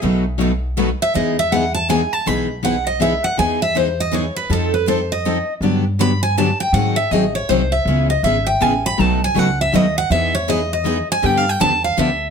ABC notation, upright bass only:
X:1
M:3/4
L:1/8
Q:"Swing" 1/4=161
K:E
V:1 name="Upright bass" clef=bass
B,,,6 | E,,6 | B,,,6 | E,,6 |
=F,,6 | =G,,6 | G,,2 A,,,2 ^B,,,2 | C,,2 G,,,2 A,,,2 |
B,,,2 C,,2 D,,2 | E,,6 | =G,,2 E,,2 =D,,2 |]